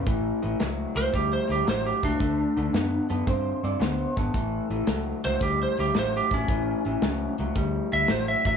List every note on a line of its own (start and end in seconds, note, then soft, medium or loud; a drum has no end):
0.07 0.31 A1 loud
0.07 0.39 A2 medium
0.07 0.40 E3 medium
0.07 kick loud
0.07 closed hi-hat medium
0.42 0.55 A1 medium
0.42 0.58 A2 medium
0.42 0.58 E3 medium
0.42 closed hi-hat medium
0.59 0.85 C#2 medium
0.59 0.92 A2 medium
0.59 0.92 F#3 medium
0.59 snare loud
0.59 closed hi-hat medium
0.94 1.07 C#2 medium
0.94 1.11 A2 medium
0.94 1.11 F#3 medium
0.94 1.14 C5 medium
0.94 closed hi-hat medium
1.12 1.38 D2 medium
1.12 1.46 A2 medium
1.12 1.46 G3 medium
1.12 1.32 G4 medium
1.12 kick medium
1.12 closed hi-hat medium
1.33 1.49 C5 medium
1.48 1.61 D2 medium
1.48 1.63 A2 medium
1.48 1.64 G3 medium
1.48 closed hi-hat medium
1.52 1.68 G4 medium
1.65 1.91 A1 loud
1.65 1.98 A2 medium
1.65 1.99 F#3 medium
1.65 snare loud
1.65 closed hi-hat medium
1.69 1.85 C5 loud
1.86 2.03 G4 medium
2.03 2.15 C#2 medium
2.03 2.18 A2 medium
2.03 2.19 F#3 medium
2.03 3.07 D4 medium
2.03 kick medium
2.03 closed hi-hat medium
2.19 2.45 D2 medium
2.19 2.52 D3 medium
2.19 2.53 A3 medium
2.19 kick loud
2.19 closed hi-hat medium
2.57 2.69 D2 medium
2.57 2.72 D3 medium
2.57 2.73 A3 medium
2.57 closed hi-hat medium
2.73 2.98 F#2 medium
2.73 3.06 D3 medium
2.73 3.06 B3 medium
2.73 snare loud
2.73 closed hi-hat medium
3.10 3.22 F#2 medium
3.10 3.25 D3 medium
3.10 3.26 B3 medium
3.10 3.27 A4 medium
3.10 closed hi-hat medium
3.27 3.52 G2 loud
3.27 3.60 D3 medium
3.27 3.60 C4 loud
3.27 3.63 C5 medium
3.27 kick loud
3.27 closed hi-hat medium
3.63 3.75 G2 medium
3.63 3.78 D3 medium
3.63 3.79 C4 medium
3.63 3.81 D5 medium
3.63 closed hi-hat medium
3.79 4.05 D2 medium
3.79 4.13 D3 medium
3.79 4.13 B3 loud
3.79 4.16 C5 medium
3.79 snare loud
3.79 closed hi-hat medium
4.16 4.29 G#1 medium
4.16 4.32 D3 medium
4.16 4.32 B3 medium
4.16 5.15 A4 medium
4.16 kick medium
4.16 closed hi-hat medium
4.34 4.59 A1 medium
4.34 4.67 A2 medium
4.34 4.67 E3 medium
4.34 kick medium
4.34 closed hi-hat medium
4.70 4.82 A1 medium
4.70 4.86 A2 medium
4.70 4.86 E3 medium
4.70 closed hi-hat medium
4.87 5.12 C#2 medium
4.87 5.20 A2 medium
4.87 5.20 F#3 loud
4.87 snare loud
4.87 closed hi-hat loud
5.24 5.36 C#2 medium
5.24 5.39 A2 medium
5.24 5.40 F#3 medium
5.24 5.41 C5 loud
5.24 snare soft
5.24 closed hi-hat medium
5.40 5.66 D2 loud
5.40 5.74 A2 medium
5.40 5.74 G3 medium
5.40 5.59 G4 medium
5.40 kick loud
5.40 closed hi-hat medium
5.63 5.78 C5 medium
5.77 5.90 D2 medium
5.77 5.93 A2 medium
5.77 5.93 G3 medium
5.77 5.96 G4 medium
5.77 closed hi-hat medium
5.95 6.20 A1 medium
5.95 6.28 A2 medium
5.95 6.28 F#3 loud
5.95 snare loud
5.95 closed hi-hat medium
5.99 6.14 C5 loud
6.17 6.32 G4 medium
6.31 6.43 A1 medium
6.31 6.46 A2 medium
6.31 6.47 F#3 medium
6.31 7.36 C#4 medium
6.31 kick medium
6.31 closed hi-hat medium
6.48 6.73 A1 medium
6.48 6.82 A2 medium
6.48 6.82 E3 medium
6.48 kick loud
6.48 closed hi-hat medium
6.85 6.97 A1 medium
6.85 7.01 A2 medium
6.85 7.01 E3 medium
6.85 closed hi-hat medium
7.02 7.27 C#2 medium
7.02 7.35 A2 medium
7.02 7.35 F#3 medium
7.02 snare loud
7.02 closed hi-hat medium
7.38 7.50 C#2 medium
7.38 7.54 A2 medium
7.38 7.54 F#3 medium
7.38 closed hi-hat medium
7.55 7.80 D2 medium
7.55 7.88 A2 medium
7.55 7.88 G3 loud
7.55 kick loud
7.55 closed hi-hat medium
7.92 8.04 D2 medium
7.92 8.07 A2 medium
7.92 8.07 G3 medium
7.92 8.09 E5 medium
7.92 closed hi-hat medium
8.08 8.34 A1 medium
8.08 8.42 A2 medium
8.08 8.42 F#3 medium
8.08 8.27 C5 medium
8.08 snare loud
8.08 closed hi-hat medium
8.28 8.45 E5 medium
8.45 8.57 A1 medium
8.45 8.57 A2 medium
8.45 8.57 F#3 medium
8.45 8.57 E5 medium
8.45 kick medium
8.45 closed hi-hat medium